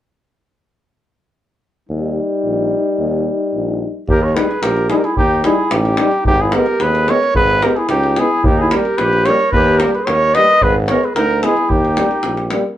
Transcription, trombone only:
0, 0, Header, 1, 2, 480
1, 0, Start_track
1, 0, Tempo, 544959
1, 1676, Time_signature, 2, 2, 24, 8
1, 11254, End_track
2, 0, Start_track
2, 0, Title_t, "Trombone"
2, 0, Program_c, 0, 57
2, 1665, Note_on_c, 0, 55, 46
2, 3562, Note_off_c, 0, 55, 0
2, 3835, Note_on_c, 0, 55, 40
2, 3933, Note_off_c, 0, 55, 0
2, 4314, Note_on_c, 0, 55, 54
2, 4411, Note_off_c, 0, 55, 0
2, 4795, Note_on_c, 0, 55, 60
2, 4893, Note_off_c, 0, 55, 0
2, 5278, Note_on_c, 0, 55, 60
2, 5374, Note_off_c, 0, 55, 0
2, 5762, Note_on_c, 0, 56, 55
2, 5858, Note_off_c, 0, 56, 0
2, 6234, Note_on_c, 0, 56, 59
2, 6331, Note_off_c, 0, 56, 0
2, 6720, Note_on_c, 0, 56, 49
2, 6815, Note_off_c, 0, 56, 0
2, 7216, Note_on_c, 0, 56, 46
2, 7308, Note_off_c, 0, 56, 0
2, 7688, Note_on_c, 0, 55, 49
2, 7782, Note_off_c, 0, 55, 0
2, 8168, Note_on_c, 0, 55, 55
2, 8261, Note_off_c, 0, 55, 0
2, 8659, Note_on_c, 0, 55, 54
2, 8750, Note_off_c, 0, 55, 0
2, 9117, Note_on_c, 0, 55, 56
2, 9212, Note_off_c, 0, 55, 0
2, 9606, Note_on_c, 0, 56, 51
2, 9699, Note_off_c, 0, 56, 0
2, 10077, Note_on_c, 0, 56, 65
2, 10171, Note_off_c, 0, 56, 0
2, 10545, Note_on_c, 0, 55, 48
2, 10641, Note_off_c, 0, 55, 0
2, 11032, Note_on_c, 0, 55, 55
2, 11126, Note_off_c, 0, 55, 0
2, 11254, End_track
0, 0, End_of_file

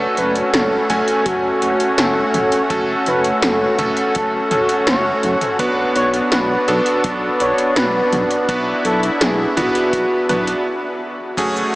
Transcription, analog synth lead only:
0, 0, Header, 1, 2, 480
1, 0, Start_track
1, 0, Tempo, 722892
1, 1796, Time_signature, 4, 2, 24, 8
1, 7803, End_track
2, 0, Start_track
2, 0, Title_t, "Analog synth lead"
2, 0, Program_c, 0, 81
2, 115, Note_on_c, 0, 71, 107
2, 208, Note_off_c, 0, 71, 0
2, 354, Note_on_c, 0, 69, 103
2, 832, Note_on_c, 0, 66, 100
2, 842, Note_off_c, 0, 69, 0
2, 1310, Note_off_c, 0, 66, 0
2, 1314, Note_on_c, 0, 69, 85
2, 1650, Note_off_c, 0, 69, 0
2, 2041, Note_on_c, 0, 71, 88
2, 2134, Note_off_c, 0, 71, 0
2, 2280, Note_on_c, 0, 69, 89
2, 2732, Note_off_c, 0, 69, 0
2, 2759, Note_on_c, 0, 69, 101
2, 3211, Note_off_c, 0, 69, 0
2, 3236, Note_on_c, 0, 73, 103
2, 3571, Note_off_c, 0, 73, 0
2, 3955, Note_on_c, 0, 73, 109
2, 4048, Note_off_c, 0, 73, 0
2, 4195, Note_on_c, 0, 71, 102
2, 4649, Note_off_c, 0, 71, 0
2, 4918, Note_on_c, 0, 73, 113
2, 5140, Note_off_c, 0, 73, 0
2, 5155, Note_on_c, 0, 71, 99
2, 5609, Note_off_c, 0, 71, 0
2, 5873, Note_on_c, 0, 69, 103
2, 5966, Note_off_c, 0, 69, 0
2, 6112, Note_on_c, 0, 68, 104
2, 6337, Note_off_c, 0, 68, 0
2, 6352, Note_on_c, 0, 66, 96
2, 7048, Note_off_c, 0, 66, 0
2, 7803, End_track
0, 0, End_of_file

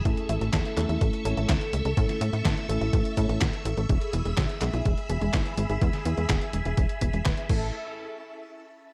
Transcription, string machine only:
0, 0, Header, 1, 2, 480
1, 0, Start_track
1, 0, Key_signature, 3, "major"
1, 0, Tempo, 480000
1, 54, Time_signature, 4, 2, 24, 8
1, 8933, End_track
2, 0, Start_track
2, 0, Title_t, "String machine"
2, 0, Program_c, 0, 50
2, 51, Note_on_c, 0, 88, 87
2, 52, Note_on_c, 0, 76, 75
2, 52, Note_on_c, 0, 85, 72
2, 53, Note_on_c, 0, 69, 80
2, 3855, Note_off_c, 0, 69, 0
2, 3855, Note_off_c, 0, 85, 0
2, 3897, Note_on_c, 0, 68, 78
2, 3897, Note_on_c, 0, 83, 71
2, 7453, Note_off_c, 0, 76, 0
2, 7453, Note_off_c, 0, 88, 0
2, 7460, Note_off_c, 0, 68, 0
2, 7460, Note_off_c, 0, 83, 0
2, 7496, Note_on_c, 0, 61, 75
2, 7496, Note_on_c, 0, 64, 67
2, 7496, Note_on_c, 0, 76, 69
2, 7496, Note_on_c, 0, 81, 78
2, 7497, Note_on_c, 0, 69, 67
2, 7718, Note_off_c, 0, 61, 0
2, 7718, Note_off_c, 0, 76, 0
2, 7718, Note_off_c, 0, 81, 0
2, 7719, Note_off_c, 0, 64, 0
2, 7719, Note_off_c, 0, 69, 0
2, 8933, End_track
0, 0, End_of_file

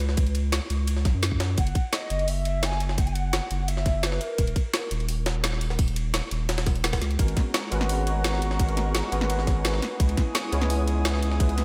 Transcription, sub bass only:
0, 0, Header, 1, 2, 480
1, 0, Start_track
1, 0, Key_signature, 5, "minor"
1, 0, Tempo, 350877
1, 239, Time_signature, 4, 2, 24, 8
1, 15932, End_track
2, 0, Start_track
2, 0, Title_t, "Sub bass"
2, 0, Program_c, 0, 38
2, 0, Note_on_c, 0, 37, 99
2, 823, Note_off_c, 0, 37, 0
2, 959, Note_on_c, 0, 37, 100
2, 1437, Note_on_c, 0, 35, 93
2, 1458, Note_off_c, 0, 37, 0
2, 1549, Note_off_c, 0, 35, 0
2, 1563, Note_on_c, 0, 42, 78
2, 2141, Note_off_c, 0, 42, 0
2, 2158, Note_on_c, 0, 30, 94
2, 2375, Note_off_c, 0, 30, 0
2, 2879, Note_on_c, 0, 30, 99
2, 4663, Note_off_c, 0, 30, 0
2, 4799, Note_on_c, 0, 30, 99
2, 5741, Note_off_c, 0, 30, 0
2, 5998, Note_on_c, 0, 27, 95
2, 6215, Note_off_c, 0, 27, 0
2, 6717, Note_on_c, 0, 27, 99
2, 8502, Note_off_c, 0, 27, 0
2, 8636, Note_on_c, 0, 27, 100
2, 9590, Note_off_c, 0, 27, 0
2, 9598, Note_on_c, 0, 37, 84
2, 9815, Note_off_c, 0, 37, 0
2, 9837, Note_on_c, 0, 32, 93
2, 10055, Note_off_c, 0, 32, 0
2, 10560, Note_on_c, 0, 32, 97
2, 12343, Note_off_c, 0, 32, 0
2, 12478, Note_on_c, 0, 32, 101
2, 13420, Note_off_c, 0, 32, 0
2, 13678, Note_on_c, 0, 37, 93
2, 13895, Note_off_c, 0, 37, 0
2, 14398, Note_on_c, 0, 37, 99
2, 15932, Note_off_c, 0, 37, 0
2, 15932, End_track
0, 0, End_of_file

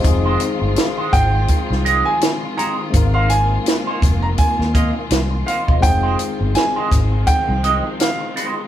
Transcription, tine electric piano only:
0, 0, Header, 1, 2, 480
1, 0, Start_track
1, 0, Key_signature, -4, "minor"
1, 0, Tempo, 723764
1, 31, Time_signature, 4, 2, 24, 8
1, 5754, End_track
2, 0, Start_track
2, 0, Title_t, "Tine electric piano"
2, 0, Program_c, 0, 4
2, 0, Control_c, 0, 64, 127
2, 0, Note_on_c, 0, 72, 64
2, 5, Note_on_c, 0, 56, 74
2, 17, Note_on_c, 0, 60, 66
2, 26, Note_on_c, 0, 63, 70
2, 38, Control_c, 0, 64, 0
2, 38, Note_on_c, 0, 65, 65
2, 48, Note_on_c, 0, 68, 83
2, 156, Note_off_c, 0, 72, 0
2, 162, Control_c, 0, 64, 127
2, 1909, Note_off_c, 0, 56, 0
2, 1915, Note_off_c, 0, 60, 0
2, 1920, Note_off_c, 0, 63, 0
2, 1926, Note_off_c, 0, 65, 0
2, 1926, Note_on_c, 0, 56, 62
2, 1931, Note_off_c, 0, 68, 0
2, 1936, Note_on_c, 0, 60, 58
2, 1946, Note_on_c, 0, 63, 62
2, 1956, Note_on_c, 0, 65, 59
2, 1957, Control_c, 0, 64, 0
2, 1968, Note_on_c, 0, 70, 78
2, 2058, Control_c, 0, 64, 127
2, 3830, Note_off_c, 0, 56, 0
2, 3835, Note_off_c, 0, 60, 0
2, 3840, Note_off_c, 0, 63, 0
2, 3845, Note_off_c, 0, 65, 0
2, 3846, Note_on_c, 0, 56, 66
2, 3851, Note_off_c, 0, 70, 0
2, 3855, Note_on_c, 0, 60, 65
2, 3867, Note_on_c, 0, 63, 59
2, 3876, Note_on_c, 0, 65, 63
2, 3877, Control_c, 0, 64, 0
2, 3887, Note_on_c, 0, 68, 72
2, 4010, Control_c, 0, 64, 127
2, 5751, Note_off_c, 0, 56, 0
2, 5754, Note_off_c, 0, 60, 0
2, 5754, Note_off_c, 0, 63, 0
2, 5754, Note_off_c, 0, 65, 0
2, 5754, Note_off_c, 0, 68, 0
2, 5754, End_track
0, 0, End_of_file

